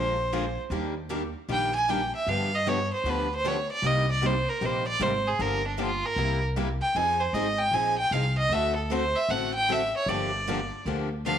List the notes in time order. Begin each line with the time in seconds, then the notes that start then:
Already playing: A#1 D3 F3 G#3 A#3 D4 F4 G#4 A#4 C5
0.32 D3 F3 G#3 A#3 D4 F4 G#4 A#4
0.70 D#2 D#3 G3 A#3 D4 G4
1.10 D#3 G3 A#3 D4 G4
1.49 A#1 D#3 G3 A#3 D4 G4 G5
1.76 G#5
1.89 D#3 G3 A#3 D4 G4 G5
2.16 E5
2.27 G2 D3 F3 B3 D4 G4 F5
2.55 D#5
2.66 D3 F3 B3 D4 G4 C#5
2.94 C5
3.04 D2 D3 F3 B3 D4 G4
3.09 B4
3.36 C5
3.44 D3 F3 B3 D4 G4 C#5
3.72 D5
3.82 C2 C3 G3 A#3 D#4 G4
3.86 D#5
4.12 D5
4.22 C3 G3 A#3 D#4 G4
4.26 C5
4.49 A#4
4.61 A#1 C3 G3 A#3 D#4 G4
4.65 C5
4.88 D5
5.00 G#1 C3 G3 A#3 D#4 G4 C5
5.27 G#4
5.39 G1 D3 F3 A#3 D4 G4 A#4
5.68 D4
5.78 D3 F3 A#3 D4 F4 G4
6.06 A#4
6.16 C2 C3 G3 A#3 E4 G4
6.56 C3 G3 A#3 E4 G4
6.82 G5
6.95 F2 F3 C4 D#4 G#4 G#5
7.20 C5
7.33 G#1 F3 C4 D#4 G#4 D#5
7.59 G5
7.71 A#1 F3 C4 D#4 G#4 G#5
7.98 G5
8.11 C2 F3 C4 D#4 G#4 F5
8.38 D#5
8.49 D2 D3 A3 C4 F#4 A4 E5
8.76 A4
8.91 D3 A3 C4 F#4 A4 C5
9.16 E5
9.29 A1 D3 A3 C4 F#4 A4 F#5
9.55 G5
9.69 D3 A3 C4 F#4 A4 E5
9.97 C#5
10.06 G1 D3 F3 A#3 D4 G4 D5
10.48 D3 F3 A#3 D4 G4
10.85 D2 D3 F3 A#3 D4 G4
11.26 D3 F3 A#3 D4 G4 F5